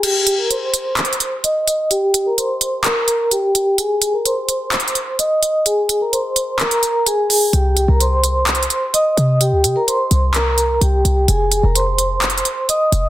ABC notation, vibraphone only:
X:1
M:4/4
L:1/16
Q:1/4=128
K:Cm
V:1 name="Vibraphone"
[Gg]3 [Bb] [cc']8 [ee']4 | G3 [Bb] [cc']4 [Bb]4 [Gg]2 G2 | [Aa]3 [Bb] [cc']8 [ee']4 | [Aa]3 [Bb] [cc']4 [Bb]4 [Aa]2 [Aa]2 |
[Gg]3 [Bb] [cc']8 [ee']4 | [Gg]3 [Bb] [cc']4 [Bb]4 [Gg]2 [Gg]2 | [Aa]3 [Bb] [cc']8 [ee']4 |]